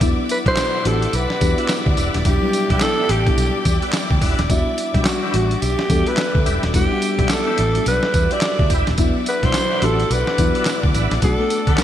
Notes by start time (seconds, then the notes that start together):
Already playing: D5 E5 D6
0.00 E1 F#3 B3 D4 E4 F#5, kick, closed hi-hat, tambourine
0.29 B4, closed hi-hat, tambourine
0.46 B1 B2 F#3 D4 E4 F#4 B4 C5, kick, closed hi-hat
0.57 snare, clap, closed hi-hat, tambourine
0.74 D4 E4 F#4 B4
0.85 A1 B3 D4 F#4 G4 A4, closed hi-hat
1.02 closed hi-hat
1.13 B1 B4, closed hi-hat, tambourine
1.30 snare
1.41 E2 B3 D4 F#4 G4, kick, closed hi-hat, tambourine
1.58 D4 E4 F#4 B4, closed hi-hat
1.69 snare, clap, closed hi-hat, tambourine
1.86 D2, kick
1.97 E1 D4 E4 F#4 B4, closed hi-hat, tambourine
2.14 D#1, snare, closed hi-hat
2.25 E1 F#3 B3 D4 E4 G4 G5, kick, closed hi-hat, tambourine
2.43 G3 B3 D4 E4
2.53 closed hi-hat, tambourine
2.70 B1 D4 E4 F#4 B4, kick, closed hi-hat
2.80 F#3 B3 D4 E4 A4, snare, clap, closed hi-hat, tambourine
2.98 D4 E4 F#4 B4
3.09 A1 G4, closed hi-hat
3.27 G3 B3 D4 E4, kick, closed hi-hat
3.37 B1, closed hi-hat, tambourine
3.65 E2, kick, closed hi-hat, tambourine
3.82 D4 E4 F#4 B4, closed hi-hat
3.93 snare, clap, closed hi-hat, tambourine
4.11 D2, kick
4.21 E1 D4 E4 F#4 B4, kick, open hi-hat, tambourine
4.39 D#1, snare, closed hi-hat
4.50 E1 G3 B3 D4 E4 F#4 E5, kick, closed hi-hat, tambourine
4.78 closed hi-hat, tambourine
4.94 B1 G3 B3 D4 E4 F#4 G4 B4, kick, closed hi-hat
5.05 F#4, snare, clap, closed hi-hat, tambourine
5.22 D4 E4 G4 B4
5.34 A1 G3 B3 D4 F#4, closed hi-hat
5.51 closed hi-hat
5.62 B1 G4, closed hi-hat, tambourine
5.79 snare
5.90 E2 G3 B3 D4 A4, kick, closed hi-hat, tambourine
6.06 D4 E4 G4 B4, closed hi-hat
6.17 snare, clap, closed hi-hat, tambourine
6.35 D2, kick
6.46 E1 D4 E4 G4 B4, closed hi-hat, tambourine
6.63 D#1, snare, closed hi-hat
6.74 E1 G3 B3 D4 E4 G4, kick, closed hi-hat, tambourine
6.91 G3 B3 D4 F#5
7.02 closed hi-hat, tambourine
7.19 B1 D4 E4 G4 B4, kick, closed hi-hat
7.29 G3 B3 D4 G4 A4, snare, clap, closed hi-hat, tambourine
7.47 D4 E4 G4 B4
7.58 A1, closed hi-hat
7.75 G3 B3 D4 F#4, closed hi-hat
7.86 B1 B4, closed hi-hat, tambourine
8.03 snare
8.14 E2, kick, closed hi-hat, tambourine
8.31 D4 E4 G4 B4 D5, closed hi-hat
8.41 snare, clap, closed hi-hat, tambourine
8.59 D2, kick
8.70 E1 D4 E4 G4 B4, kick, closed hi-hat, tambourine
8.87 D#1, snare, closed hi-hat
8.98 E1 F#3 B3 D4 E4 D5 F#5 D6, kick, closed hi-hat, tambourine
9.26 B4, closed hi-hat, tambourine
9.43 B1 B2 F#3 D4 E4 F#4 B4 C5, kick, closed hi-hat
9.53 snare, clap, closed hi-hat, tambourine
9.71 D4 E4 F#4 B4
9.82 A1 B3 D4 F#4 G4 A4, closed hi-hat
10.00 closed hi-hat
10.10 B1 B4, closed hi-hat, tambourine
10.27 snare
10.38 E2 F#3 B3 D4 E4, kick, closed hi-hat, tambourine
10.55 D4 E4 F#4 B4, closed hi-hat
10.65 snare, clap, closed hi-hat, tambourine
10.83 D2, kick
10.94 A1 D4 E4 F#4 B4, closed hi-hat, tambourine
11.11 A#1, snare, closed hi-hat
11.22 B1 A3 B3 D4 F#4 A4 F#5 A5, kick, closed hi-hat, tambourine
11.39 A3 B3 D4 A4
11.50 closed hi-hat, tambourine
11.67 D2 D4 F#4 A4 B4, kick, closed hi-hat
11.78 A3 B3 D4 F#4 B4, snare, clap, closed hi-hat, tambourine